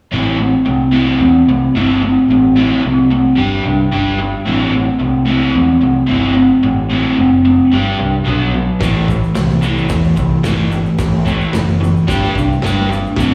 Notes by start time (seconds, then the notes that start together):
0.12 A1 A3 C4 E4
0.38 A3 C4
0.65 C2 A3 C4
0.91 A3 C4 E4
1.20 E2 A3 C4
1.47 C2 A3 C4
1.75 G1 A3 C4 E4
2.03 A3 C4
2.28 A1 A3 C4
2.56 A3 C4 E4
2.83 C2 A3 C4
3.10 A3 C4
3.35 G1 G3 D4 G4
3.64 C2 G3 D4
3.91 G1 G3 D4 G4
4.19 G3 D4
4.45 A1 A3 C4 E4
4.72 A3 C4
5.00 C2 A3 C4
5.26 A3 C4 E4
5.55 E2 A3 C4
5.81 C2 A3 C4
6.06 G1 A3 C4 E4
6.34 A3 C4
6.63 A1 A3 C4
6.90 A3 C4 E4
7.17 F#1 A3 C4
7.45 A3 C4
7.72 G1 G3 D4 G4
7.99 C2 G3 D4
8.25 B1 B2 F#3 B3
8.54 B2 F#3
8.80 A1 A2 E3 A3, kick, snare, open hi-hat, shaker
9.08 A2 E3, kick, shaker
9.23 shaker
9.35 C2 A2 E3, snare, open hi-hat, shaker
9.50 shaker
9.61 A2 E3 A3, shaker
9.77 shaker
9.89 E2 A2 E3, kick, snare, open hi-hat, shaker
10.04 shaker
10.16 C2 A2 E3, kick, shaker
10.43 G1 A2 E3 A3, snare, open hi-hat, shaker
10.71 A2 E3, shaker
10.86 shaker
10.99 A1 A2 E3, kick, snare, open hi-hat, shaker
11.26 A2 E3 A3, kick, shaker
11.41 shaker
11.53 F#1 A2 E3, snare, open hi-hat, shaker
11.68 shaker
11.80 A2 E3, shaker
11.97 shaker
12.07 G1 G3 D4 G4, kick, snare, open hi-hat, shaker
12.24 shaker
12.35 C2 G3 D4, kick, shaker
12.52 shaker
12.62 G1 G3 D4 G4, snare, open hi-hat
12.66 shaker
12.90 G3 D4, shaker
13.06 shaker
13.16 A1 A3 C4 E4, kick, snare, open hi-hat, shaker